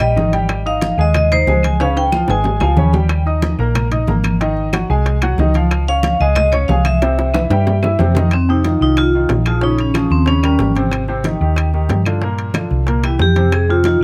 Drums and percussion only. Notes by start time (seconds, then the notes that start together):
0.00 high bongo, high conga, high timbale, claves
0.17 high bongo, low bongo, high conga
0.33 high bongo, high conga, high timbale
0.49 high bongo, high conga, high timbale, claves
0.67 high conga
0.81 high bongo, high conga, high timbale
0.99 high bongo, high conga
1.14 high bongo, high conga, low conga, high timbale, claves
1.31 high bongo, high conga, low conga, high timbale
1.47 high bongo, low bongo, high conga, low timbale
1.63 high bongo, high conga, high timbale, claves
1.80 high bongo, high timbale
1.97 high conga, high timbale
2.12 high bongo, high conga, claves
2.28 high bongo, high timbale
2.44 low bongo, high conga, low timbale
2.61 high bongo, high conga, low timbale, claves
2.77 low bongo, high conga
2.93 low bongo, high conga, low timbale
3.09 high bongo, high timbale, claves
3.26 high conga
3.42 high bongo, high conga, high timbale
3.59 high bongo, high conga
3.75 high bongo, high conga, low conga, high timbale, claves
3.91 high bongo, high conga, low conga, high timbale
4.07 high bongo, low bongo, high conga
4.24 high bongo, high conga, high timbale, claves
4.40 high bongo, high conga, high timbale
4.57 high conga
4.73 high bongo, high conga, high timbale, claves
4.90 high bongo
5.06 high bongo, high conga, high timbale
5.22 high bongo, high conga, high timbale, claves
5.38 high bongo, low bongo, high conga, low timbale
5.54 high bongo, high conga, high timbale
5.71 high bongo, high conga, high timbale, claves
5.87 high conga
6.03 high bongo, high conga, high timbale
6.19 high bongo, high conga
6.36 high bongo, high conga, low conga, high timbale, claves
6.53 high bongo, high conga, low conga, high timbale
6.69 high bongo, low bongo, high conga, low timbale
6.85 high bongo, high conga, high timbale, claves
7.02 high bongo, high timbale
7.18 high bongo, high conga
7.34 high bongo, high conga, high timbale, claves
7.50 high bongo, high timbale
7.67 low bongo, high conga, low timbale
7.83 low bongo, low timbale, claves
7.99 low bongo, high conga, low timbale
8.15 low bongo, high conga, low timbale
8.31 high bongo, high timbale, claves
8.48 high conga
8.64 high bongo, high conga, high timbale, low timbale
8.81 high conga
8.97 high bongo, high conga, high timbale, claves
9.14 high conga
9.29 high bongo, low bongo, high conga, high timbale, low timbale
9.46 high conga, high timbale, claves
9.61 high bongo, high conga
9.79 high conga, high timbale
9.94 high bongo, high conga, high timbale, low timbale, claves
10.10 high bongo, high conga
10.26 high bongo, high conga, high timbale
10.43 high bongo, high conga, high timbale, claves
10.59 high bongo, low bongo, high conga, low timbale
10.76 high bongo, high conga, high timbale
10.92 high bongo, high conga, high timbale, claves
11.08 high conga
11.24 high bongo, high conga, high timbale, low timbale
11.41 high conga
11.56 high bongo, high conga, high timbale, claves
11.74 high conga
11.89 high bongo, low bongo, high conga, high timbale, low timbale
12.06 high timbale, claves
12.22 high bongo, high conga
12.38 high conga, high timbale
12.54 high bongo, high conga, high timbale, low timbale, claves
12.70 high bongo, high conga
12.87 high bongo, high conga, high timbale
13.03 high bongo, high conga, high timbale, claves
13.19 high bongo, low bongo, high conga, low timbale
13.36 high bongo, high conga, high timbale
13.52 high bongo, high timbale, claves
13.68 high conga
13.84 high bongo, high conga, high timbale, low timbale
14.00 high conga